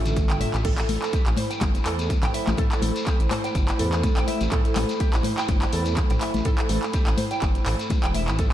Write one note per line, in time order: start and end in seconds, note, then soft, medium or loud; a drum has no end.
0.00 0.31 A1 medium
0.00 0.61 D4 medium
0.00 0.61 F4 medium
0.00 0.61 A4 medium
0.00 0.61 E5 medium
0.05 closed hi-hat soft
0.05 mid tom medium
0.05 shekere medium
0.16 kick loud
0.16 closed hi-hat medium
0.16 mid tom medium
0.16 high conga medium
0.16 shekere medium
0.29 0.45 G1 loud
0.29 0.35 G5 medium
0.29 clap medium
0.29 closed hi-hat soft
0.29 mid tom medium
0.29 shekere soft
0.41 0.53 E5 medium
0.41 mid tom medium
0.41 open hi-hat medium
0.41 high conga medium
0.53 0.83 A1 loud
0.53 clap medium
0.53 closed hi-hat soft
0.53 mid tom medium
0.53 shekere medium
0.65 8.35 A3 medium
0.65 8.35 E4 medium
0.65 0.77 A4 loud
0.65 8.35 C5 medium
0.65 8.35 B5 medium
0.65 kick loud
0.65 closed hi-hat medium
0.65 mid tom loud
0.65 crash medium
0.65 shekere medium
0.78 clap loud
0.78 closed hi-hat medium
0.78 shekere soft
0.89 0.98 A1 loud
0.89 1.01 A4 medium
0.89 open hi-hat medium
0.89 high conga medium
1.02 clap medium
1.02 closed hi-hat soft
1.02 shekere medium
1.13 1.26 G4 loud
1.13 kick loud
1.13 closed hi-hat medium
1.13 shekere medium
1.26 1.34 A1 loud
1.26 clap medium
1.26 closed hi-hat soft
1.26 shekere soft
1.37 1.49 C5 medium
1.37 mid tom medium
1.37 open hi-hat medium
1.37 high conga medium
1.50 1.60 G5 medium
1.50 closed hi-hat soft
1.50 shekere medium
1.61 1.78 G1 loud
1.61 kick loud
1.61 clap medium
1.61 closed hi-hat medium
1.61 high conga loud
1.61 low conga medium
1.61 shekere medium
1.74 closed hi-hat soft
1.74 shekere soft
1.86 2.16 E2 medium
1.86 1.98 A4 medium
1.86 clap medium
1.86 open hi-hat medium
1.99 closed hi-hat soft
1.99 shekere medium
2.10 kick loud
2.10 closed hi-hat medium
2.10 shekere medium
2.23 2.30 A1 medium
2.23 2.29 G5 medium
2.23 clap medium
2.23 closed hi-hat soft
2.23 mid tom medium
2.23 low conga loud
2.23 shekere soft
2.34 2.47 E5 medium
2.34 open hi-hat medium
2.47 2.55 A1 medium
2.47 clap medium
2.47 closed hi-hat soft
2.47 high conga medium
2.47 shekere medium
2.58 2.70 A4 loud
2.58 kick loud
2.58 closed hi-hat medium
2.58 mid tom medium
2.58 low conga medium
2.58 shekere medium
2.71 clap loud
2.71 closed hi-hat soft
2.71 shekere soft
2.82 2.91 A1 loud
2.82 2.94 A4 medium
2.82 open hi-hat loud
2.82 high conga loud
2.96 closed hi-hat soft
2.96 shekere medium
3.07 3.19 G4 loud
3.07 kick loud
3.07 clap medium
3.07 closed hi-hat medium
3.07 shekere medium
3.20 3.27 A1 loud
3.20 closed hi-hat soft
3.20 shekere soft
3.31 3.43 C5 medium
3.31 clap medium
3.31 mid tom medium
3.31 open hi-hat medium
3.31 high conga loud
3.44 3.54 G5 medium
3.44 closed hi-hat soft
3.44 shekere medium
3.55 3.72 G1 loud
3.55 kick loud
3.55 closed hi-hat medium
3.55 shekere medium
3.68 clap medium
3.68 closed hi-hat soft
3.68 shekere soft
3.79 4.09 E2 medium
3.79 3.91 A4 medium
3.79 mid tom medium
3.79 open hi-hat medium
3.92 clap medium
3.92 closed hi-hat soft
3.92 shekere medium
4.03 kick loud
4.03 closed hi-hat medium
4.03 high conga loud
4.03 shekere medium
4.17 4.24 A1 medium
4.17 4.23 G5 medium
4.17 clap loud
4.17 closed hi-hat soft
4.17 shekere soft
4.28 4.40 E5 medium
4.28 open hi-hat medium
4.28 high conga medium
4.40 4.48 A1 medium
4.40 closed hi-hat soft
4.40 shekere medium
4.52 4.64 A4 loud
4.52 kick loud
4.52 clap medium
4.52 closed hi-hat medium
4.52 mid tom medium
4.65 closed hi-hat soft
4.65 shekere soft
4.76 4.85 A1 loud
4.76 4.88 A4 medium
4.76 clap loud
4.76 open hi-hat loud
4.76 high conga loud
4.89 closed hi-hat soft
4.89 shekere medium
5.00 5.13 G4 loud
5.00 kick loud
5.00 closed hi-hat medium
5.00 shekere medium
5.13 5.21 A1 loud
5.13 clap loud
5.13 closed hi-hat soft
5.13 shekere soft
5.23 5.36 C5 medium
5.23 mid tom medium
5.23 open hi-hat medium
5.23 high conga loud
5.37 5.47 G5 medium
5.37 clap medium
5.37 closed hi-hat soft
5.37 shekere medium
5.49 5.65 G1 loud
5.49 kick loud
5.49 closed hi-hat medium
5.49 high conga loud
5.49 low conga medium
5.49 shekere medium
5.62 clap loud
5.62 closed hi-hat soft
5.62 shekere soft
5.73 6.03 E2 medium
5.73 5.85 A4 medium
5.73 open hi-hat loud
5.85 closed hi-hat soft
5.85 shekere medium
5.97 kick loud
5.97 clap medium
5.97 closed hi-hat medium
5.97 shekere medium
6.10 6.17 A1 medium
6.10 6.16 G5 medium
6.10 closed hi-hat soft
6.10 mid tom medium
6.10 low conga loud
6.10 shekere soft
6.21 6.34 E5 medium
6.21 clap medium
6.21 open hi-hat medium
6.34 6.42 A1 medium
6.34 closed hi-hat soft
6.34 high conga loud
6.34 shekere medium
6.45 6.57 A4 loud
6.45 kick loud
6.45 closed hi-hat medium
6.45 mid tom medium
6.45 low conga medium
6.45 shekere medium
6.58 clap loud
6.58 closed hi-hat soft
6.58 shekere soft
6.69 6.78 A1 medium
6.69 6.81 A4 medium
6.69 open hi-hat medium
6.69 high conga medium
6.83 clap medium
6.83 closed hi-hat soft
6.83 shekere medium
6.93 7.06 G4 loud
6.93 kick loud
6.93 closed hi-hat medium
6.93 shekere medium
7.07 7.14 A1 loud
7.07 clap loud
7.07 closed hi-hat soft
7.07 shekere soft
7.17 7.30 C5 medium
7.17 mid tom medium
7.17 open hi-hat medium
7.17 high conga loud
7.31 7.41 G5 medium
7.31 closed hi-hat soft
7.31 shekere medium
7.42 7.59 G1 loud
7.42 kick loud
7.42 clap medium
7.42 closed hi-hat medium
7.42 shekere medium
7.55 closed hi-hat soft
7.55 shekere soft
7.66 7.75 A1 loud
7.66 7.78 A4 medium
7.66 clap loud
7.66 mid tom medium
7.66 open hi-hat medium
7.79 closed hi-hat soft
7.79 shekere medium
7.90 kick loud
7.90 closed hi-hat medium
7.90 high conga medium
7.90 shekere medium
8.03 8.29 E1 loud
8.03 8.10 G5 medium
8.03 clap loud
8.03 closed hi-hat soft
8.03 shekere soft
8.14 8.27 E5 medium
8.14 open hi-hat medium
8.14 high conga medium
8.27 8.53 A1 medium
8.27 clap medium
8.27 closed hi-hat soft
8.27 shekere medium
8.39 8.53 D4 medium
8.39 8.53 F4 medium
8.39 8.53 A4 medium
8.39 8.51 A4 loud
8.39 8.53 E5 medium
8.39 kick loud
8.39 closed hi-hat medium
8.39 mid tom medium
8.39 shekere medium